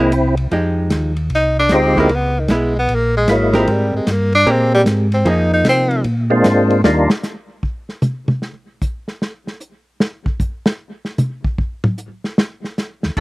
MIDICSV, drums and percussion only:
0, 0, Header, 1, 2, 480
1, 0, Start_track
1, 0, Tempo, 395257
1, 633, Time_signature, 4, 2, 24, 8
1, 16031, End_track
2, 0, Start_track
2, 0, Title_t, "Drums"
2, 144, Note_on_c, 9, 44, 57
2, 144, Note_on_c, 9, 51, 72
2, 265, Note_off_c, 9, 44, 0
2, 265, Note_off_c, 9, 51, 0
2, 453, Note_on_c, 9, 51, 52
2, 574, Note_off_c, 9, 51, 0
2, 624, Note_on_c, 9, 51, 53
2, 625, Note_on_c, 9, 36, 24
2, 745, Note_off_c, 9, 51, 0
2, 746, Note_off_c, 9, 36, 0
2, 1097, Note_on_c, 9, 44, 63
2, 1097, Note_on_c, 9, 51, 77
2, 1099, Note_on_c, 9, 38, 59
2, 1104, Note_on_c, 9, 36, 22
2, 1218, Note_off_c, 9, 44, 0
2, 1218, Note_off_c, 9, 51, 0
2, 1220, Note_off_c, 9, 38, 0
2, 1226, Note_off_c, 9, 36, 0
2, 1415, Note_on_c, 9, 51, 43
2, 1537, Note_off_c, 9, 51, 0
2, 1576, Note_on_c, 9, 51, 52
2, 1583, Note_on_c, 9, 36, 19
2, 1698, Note_off_c, 9, 51, 0
2, 1705, Note_off_c, 9, 36, 0
2, 2054, Note_on_c, 9, 44, 57
2, 2054, Note_on_c, 9, 51, 66
2, 2056, Note_on_c, 9, 38, 65
2, 2063, Note_on_c, 9, 36, 23
2, 2175, Note_off_c, 9, 44, 0
2, 2175, Note_off_c, 9, 51, 0
2, 2178, Note_off_c, 9, 38, 0
2, 2184, Note_off_c, 9, 36, 0
2, 2375, Note_on_c, 9, 36, 50
2, 2496, Note_off_c, 9, 36, 0
2, 2542, Note_on_c, 9, 51, 54
2, 2545, Note_on_c, 9, 36, 19
2, 2663, Note_off_c, 9, 51, 0
2, 2666, Note_off_c, 9, 36, 0
2, 3015, Note_on_c, 9, 44, 56
2, 3015, Note_on_c, 9, 51, 68
2, 3018, Note_on_c, 9, 38, 67
2, 3023, Note_on_c, 9, 36, 19
2, 3137, Note_off_c, 9, 44, 0
2, 3137, Note_off_c, 9, 51, 0
2, 3139, Note_off_c, 9, 38, 0
2, 3144, Note_off_c, 9, 36, 0
2, 3505, Note_on_c, 9, 36, 22
2, 3505, Note_on_c, 9, 51, 60
2, 3626, Note_off_c, 9, 36, 0
2, 3627, Note_off_c, 9, 51, 0
2, 3979, Note_on_c, 9, 44, 49
2, 3979, Note_on_c, 9, 51, 66
2, 3981, Note_on_c, 9, 36, 25
2, 3981, Note_on_c, 9, 38, 66
2, 4100, Note_off_c, 9, 44, 0
2, 4100, Note_off_c, 9, 51, 0
2, 4102, Note_off_c, 9, 36, 0
2, 4103, Note_off_c, 9, 38, 0
2, 4291, Note_on_c, 9, 51, 45
2, 4294, Note_on_c, 9, 38, 41
2, 4413, Note_off_c, 9, 51, 0
2, 4415, Note_off_c, 9, 38, 0
2, 4461, Note_on_c, 9, 36, 23
2, 4463, Note_on_c, 9, 51, 59
2, 4583, Note_off_c, 9, 36, 0
2, 4584, Note_off_c, 9, 51, 0
2, 4940, Note_on_c, 9, 36, 19
2, 4941, Note_on_c, 9, 44, 62
2, 4941, Note_on_c, 9, 51, 73
2, 4943, Note_on_c, 9, 38, 66
2, 5061, Note_off_c, 9, 36, 0
2, 5062, Note_off_c, 9, 44, 0
2, 5062, Note_off_c, 9, 51, 0
2, 5064, Note_off_c, 9, 38, 0
2, 5255, Note_on_c, 9, 51, 37
2, 5376, Note_off_c, 9, 51, 0
2, 5420, Note_on_c, 9, 36, 20
2, 5429, Note_on_c, 9, 51, 62
2, 5541, Note_off_c, 9, 36, 0
2, 5550, Note_off_c, 9, 51, 0
2, 5898, Note_on_c, 9, 36, 22
2, 5902, Note_on_c, 9, 44, 61
2, 5902, Note_on_c, 9, 51, 66
2, 5904, Note_on_c, 9, 38, 69
2, 6020, Note_off_c, 9, 36, 0
2, 6023, Note_off_c, 9, 44, 0
2, 6023, Note_off_c, 9, 51, 0
2, 6026, Note_off_c, 9, 38, 0
2, 6216, Note_on_c, 9, 51, 51
2, 6337, Note_off_c, 9, 51, 0
2, 6378, Note_on_c, 9, 36, 27
2, 6382, Note_on_c, 9, 51, 68
2, 6499, Note_off_c, 9, 36, 0
2, 6504, Note_off_c, 9, 51, 0
2, 6858, Note_on_c, 9, 36, 24
2, 6858, Note_on_c, 9, 44, 50
2, 6858, Note_on_c, 9, 51, 70
2, 6860, Note_on_c, 9, 38, 75
2, 6979, Note_off_c, 9, 44, 0
2, 6979, Note_off_c, 9, 51, 0
2, 6980, Note_off_c, 9, 36, 0
2, 6981, Note_off_c, 9, 38, 0
2, 7174, Note_on_c, 9, 51, 43
2, 7296, Note_off_c, 9, 51, 0
2, 7339, Note_on_c, 9, 51, 57
2, 7340, Note_on_c, 9, 36, 20
2, 7460, Note_off_c, 9, 51, 0
2, 7462, Note_off_c, 9, 36, 0
2, 7823, Note_on_c, 9, 44, 57
2, 7823, Note_on_c, 9, 51, 66
2, 7824, Note_on_c, 9, 36, 16
2, 7825, Note_on_c, 9, 38, 75
2, 7944, Note_off_c, 9, 44, 0
2, 7944, Note_off_c, 9, 51, 0
2, 7945, Note_off_c, 9, 36, 0
2, 7946, Note_off_c, 9, 38, 0
2, 8142, Note_on_c, 9, 51, 46
2, 8263, Note_off_c, 9, 51, 0
2, 8309, Note_on_c, 9, 38, 94
2, 8430, Note_off_c, 9, 38, 0
2, 8620, Note_on_c, 9, 38, 99
2, 8741, Note_off_c, 9, 38, 0
2, 8783, Note_on_c, 9, 44, 59
2, 8785, Note_on_c, 9, 38, 44
2, 8904, Note_off_c, 9, 44, 0
2, 8907, Note_off_c, 9, 38, 0
2, 9266, Note_on_c, 9, 36, 74
2, 9387, Note_off_c, 9, 36, 0
2, 9580, Note_on_c, 9, 38, 29
2, 9701, Note_off_c, 9, 38, 0
2, 9738, Note_on_c, 9, 44, 51
2, 9740, Note_on_c, 9, 48, 98
2, 9859, Note_off_c, 9, 44, 0
2, 9862, Note_off_c, 9, 48, 0
2, 10055, Note_on_c, 9, 48, 93
2, 10177, Note_off_c, 9, 48, 0
2, 10225, Note_on_c, 9, 38, 38
2, 10346, Note_off_c, 9, 38, 0
2, 10707, Note_on_c, 9, 36, 81
2, 10707, Note_on_c, 9, 44, 56
2, 10828, Note_off_c, 9, 36, 0
2, 10828, Note_off_c, 9, 44, 0
2, 11023, Note_on_c, 9, 38, 35
2, 11145, Note_off_c, 9, 38, 0
2, 11195, Note_on_c, 9, 38, 52
2, 11316, Note_off_c, 9, 38, 0
2, 11505, Note_on_c, 9, 38, 35
2, 11626, Note_off_c, 9, 38, 0
2, 11663, Note_on_c, 9, 44, 57
2, 11784, Note_off_c, 9, 44, 0
2, 12148, Note_on_c, 9, 38, 93
2, 12269, Note_off_c, 9, 38, 0
2, 12459, Note_on_c, 9, 36, 84
2, 12580, Note_off_c, 9, 36, 0
2, 12627, Note_on_c, 9, 36, 79
2, 12628, Note_on_c, 9, 44, 54
2, 12748, Note_off_c, 9, 36, 0
2, 12749, Note_off_c, 9, 44, 0
2, 12942, Note_on_c, 9, 38, 84
2, 13064, Note_off_c, 9, 38, 0
2, 13416, Note_on_c, 9, 38, 38
2, 13538, Note_off_c, 9, 38, 0
2, 13579, Note_on_c, 9, 44, 61
2, 13581, Note_on_c, 9, 48, 93
2, 13700, Note_off_c, 9, 44, 0
2, 13703, Note_off_c, 9, 48, 0
2, 13898, Note_on_c, 9, 36, 84
2, 14019, Note_off_c, 9, 36, 0
2, 14068, Note_on_c, 9, 36, 79
2, 14189, Note_off_c, 9, 36, 0
2, 14376, Note_on_c, 9, 47, 101
2, 14498, Note_off_c, 9, 47, 0
2, 14546, Note_on_c, 9, 44, 61
2, 14668, Note_off_c, 9, 44, 0
2, 14869, Note_on_c, 9, 38, 45
2, 14990, Note_off_c, 9, 38, 0
2, 15035, Note_on_c, 9, 38, 95
2, 15156, Note_off_c, 9, 38, 0
2, 15356, Note_on_c, 9, 38, 34
2, 15477, Note_off_c, 9, 38, 0
2, 15518, Note_on_c, 9, 44, 55
2, 15521, Note_on_c, 9, 38, 55
2, 15640, Note_off_c, 9, 44, 0
2, 15642, Note_off_c, 9, 38, 0
2, 15826, Note_on_c, 9, 38, 58
2, 15947, Note_off_c, 9, 38, 0
2, 15990, Note_on_c, 9, 49, 77
2, 15991, Note_on_c, 9, 36, 68
2, 16031, Note_off_c, 9, 36, 0
2, 16031, Note_off_c, 9, 49, 0
2, 16031, End_track
0, 0, End_of_file